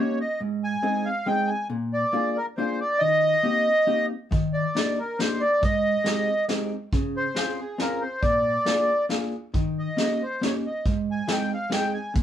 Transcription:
Already playing: A#3 C#4 C#5
0.00 D#4 G4
0.21 D#5
0.41 G#2
0.64 G#5
0.83 G#3 C4 D#4 G#4
1.05 F5
1.26 G#3 C4 D#4 G#4 G5
1.47 G#5
1.70 A#2
1.93 D5
2.13 A#3 D4 F4 G#4
2.37 A#4
2.57 A#3 D4 F4 G#4 C5
2.80 D5
2.99 D#3 D#5
3.43 A#3 C4 D#4 G4
3.87 A#3 C4 D#4 G4
4.31 D#3, kick, closed hi-hat
4.53 D5
4.75 A#3 D4 D#4 G4, snare, closed hi-hat
4.99 A#4
5.18 A#3 D4 D#4 G4 C5, snare, closed hi-hat
5.40 D5
5.62 G#2 D#5, kick, closed hi-hat
6.04 G#3 C4 D#4 G4, snare, closed hi-hat
6.48 G#3 C4 D#4 G4, snare, closed hi-hat
6.93 C#3, kick, closed hi-hat
7.17 C5
7.35 C4 C#4 F4 G#4, snare, closed hi-hat
7.59 G#4
7.78 C4 C#4 F4 G#4 A#4, snare, closed hi-hat
8.01 C5
8.22 A#2 D5, kick, closed hi-hat
8.66 A#3 D4 F4 G#4, snare, closed hi-hat
9.09 A#3 D4 F4 G#4, snare, closed hi-hat
9.54 D#3, kick, closed hi-hat
9.79 D#5
9.97 A#3 C#4 D#4 G4, snare, closed hi-hat
10.23 C5
10.41 A#3 C#4 D#4 G4 C#5, snare, closed hi-hat
10.66 D#5
10.86 G#2, kick, closed hi-hat
11.11 G#5
11.28 G#3 C4 D#4 G#4, snare, closed hi-hat
11.32 G5
11.54 F5
11.70 G#3 C4 D#4 G#4 G5, snare, closed hi-hat
11.94 G#5
12.14 A#2, kick, closed hi-hat

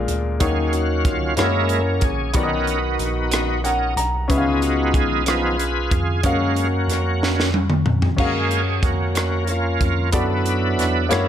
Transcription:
Already playing: A#2 G#3 D4 F4 A#4
0.08 D2, closed hi-hat
0.40 D#2 D#3 F#3 A#3 C#4 D#4 F#4 G#4 C#5 F5, kick, closed hi-hat
0.73 F#4, closed hi-hat
1.05 F4, kick, closed hi-hat
1.36 F#2 G#3 A#3 C#4 E4 F#4 A#4 C#5, cross-stick, closed hi-hat
1.69 closed hi-hat
2.00 A#1 G#4, kick, closed hi-hat
2.33 B1 D#3 B3 C#4 D#4 F#4 A#4 D5, kick, closed hi-hat
2.43 D#5
2.67 closed hi-hat
2.99 A#1, closed hi-hat
3.31 cross-stick, closed hi-hat
3.64 C#4 D#4 A#4 F#5, closed hi-hat
3.97 B1 A#5, closed hi-hat
4.28 C#2 C#3 G#3 B3 C#4 G#4 B4 E5, kick, closed hi-hat
4.32 D#4 F4
4.38 F5
4.62 F#4, closed hi-hat
4.94 B1 G#4, kick, closed hi-hat
5.26 F3 B3 D#4 F4 G#4 B4, cross-stick, closed hi-hat
5.59 closed hi-hat
5.91 F2 G#4, kick, closed hi-hat
6.23 F#2 G#3 A#3 C#4 F#4 A#4 F5, kick, closed hi-hat
6.57 closed hi-hat
6.88 F2, cross-stick, closed hi-hat
7.23 snare
7.40 snare
7.54 high tom
7.70 mid tom
7.86 F2, mid tom
8.02 floor tom
8.16 F#2 G#3 A#3 C#4 F#4 G#4 A#4 F5, kick, crash
8.51 closed hi-hat
8.82 F2 A#3 C#4 F#4, kick, closed hi-hat
9.15 cross-stick, closed hi-hat
9.47 A#3 C#4 F4, closed hi-hat
9.81 F2, kick, closed hi-hat
10.12 F#2 F#3 B3 D4 E4 F#4 A4 B4 D5, kick, closed hi-hat
10.46 closed hi-hat
10.79 E2, cross-stick, closed hi-hat
11.09 F#2 G#3 A#3 E4 F#4 A#4 C#5, closed hi-hat
11.13 cross-stick

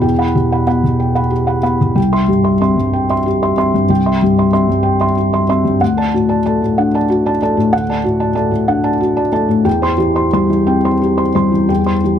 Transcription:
Already playing: B2 B3
0.02 E2 G5
0.19 F#5 B5
0.35 B2 G4
0.52 F#5 B5
0.67 B3 F#5 B5
0.84 B2
1.00 G5
1.15 F#5 B5
1.30 G4
1.47 F#5 B5
1.63 B3 F#5 B5
1.81 B2
1.95 C2 G5
2.12 E5 C6
2.28 G2 G4
2.44 E5 C6
2.61 C4 E5 C6
2.77 G2
2.93 G5
3.10 E5 C6
3.26 G4
3.43 E5 C6
3.57 C4 E5 C6
3.74 G2
3.89 C2 G5
4.06 E5 C6
4.22 G2 G4
4.38 E5 C6
4.53 C4 E5 C6
4.69 G2
4.83 G5
5.01 E5 C6
5.17 G4
5.33 E5 C6
5.49 C4 E5 C6
5.65 G2
5.81 D2 F#5
5.97 D5 A5
6.14 A2 F#4
6.29 D5 A5
6.46 A3 D5 A5
6.62 A2
6.78 D4 F#5
6.94 D5 A5
7.10 F#4
7.26 D5 A5
7.42 A3 D5 A5
7.57 A2
7.73 D2 F#5
7.89 D5 A5
8.04 A2 F#4
8.20 D5 A5
8.35 A3 D5 A5
8.51 A2
8.68 D4 F#5
8.84 D5 A5
9.00 F#4
9.17 D5 A5
9.32 A3 D5 A5
9.49 A2
9.65 E2 G5
9.82 C5 C6
9.98 E3 G4
10.15 C5 C6
10.33 G3 C5 C6
10.50 E3
10.67 C4 G5
10.85 C5 C6
11.02 G4
11.17 C5 C6
11.35 G3 C5 C6
11.52 E3
11.69 E2 G5
11.86 C5 C6
12.04 E3 G4

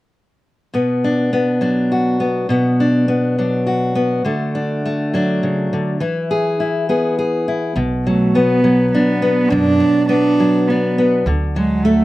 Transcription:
0.74 B2 B3
1.04 D4
1.33 B3
1.61 F#3 D4
1.92 F#4
2.20 B3
2.49 B2 B3
2.80 D4
3.08 B3
3.38 F#3 D4
3.67 F#4
3.95 B3
4.25 D3 A3
4.55 D4
4.86 A3
5.14 F#3 D4
5.43 C#3
5.73 D3
6.00 E3 E4
6.31 G#4
6.60 E4
6.89 B3 G#4
7.19 G#4
7.48 E4
7.76 B1 B2
8.05 F#3 A3
8.34 B3
8.64 F#3
8.91 B3 D4
9.22 B3
9.49 F#2 B2 D4
9.80 F#3
10.08 B3 D4
10.40 F#3
10.68 B3 D4
10.98 B3
11.26 D2 D3
11.56 F#3 G#3
11.83 A3

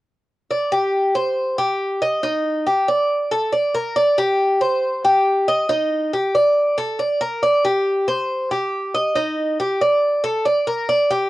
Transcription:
0.51 D5
0.72 G4
1.15 C5
1.58 G4
2.02 D#5
2.23 D#4
2.67 G4
2.88 D5
3.31 A4
3.52 D5
3.75 A#4
3.96 D5
4.18 G4
4.61 C5
5.04 G4
5.48 D#5
5.69 D#4
6.13 G4
6.35 D5
6.78 A4
6.99 D5
7.21 A#4
7.43 D5
7.65 G4
8.08 C5
8.51 G4
8.94 D#5
9.15 D#4
9.60 G4
9.81 D5
10.24 A4
10.45 D5
10.67 A#4
10.89 D5
11.11 G4

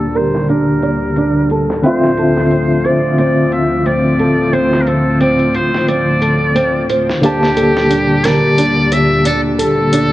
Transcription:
Already playing: D2 A#2 D3 G3 A#3 D4 G4 A4 A5
0.00 closed hi-hat
0.15 A#4 C5, closed hi-hat
0.35 snare
0.49 D4 A#4, closed hi-hat
0.82 D5, closed hi-hat
1.16 D4, closed hi-hat
1.50 A4, closed hi-hat
1.70 snare
1.82 A2 D3 F3 C4 C5 E5, closed hi-hat
1.87 F4
2.04 snare
2.17 A4, closed hi-hat
2.37 snare
2.51 C4, closed hi-hat
2.85 C5 D5, closed hi-hat
3.18 C4 D5, closed hi-hat
3.52 F4 E5, closed hi-hat
3.86 C4 D5, closed hi-hat
4.19 A4, closed hi-hat
4.53 C4 C5, closed hi-hat
4.73 snare
4.82 A#4
4.87 A4 C5, closed hi-hat
5.21 C4 D5, closed hi-hat
5.39 closed hi-hat
5.54 F4 C5, closed hi-hat
5.74 snare
5.88 C4 D5, closed hi-hat
6.22 A4, closed hi-hat
6.55 C4, closed hi-hat
6.89 C5, closed hi-hat
7.09 snare
7.21 D2 A#2 D3 G3 A#3 D4 G4, closed hi-hat
7.26 A5
7.43 snare
7.57 A4, closed hi-hat
7.77 snare
7.90 D4, closed hi-hat
8.24 A#4 D5, snare, closed hi-hat
8.58 D4, closed hi-hat
8.92 D5 E5, closed hi-hat
9.25 D4 A4, closed hi-hat
9.58 A4, closed hi-hat
9.93 F3 D4, closed hi-hat

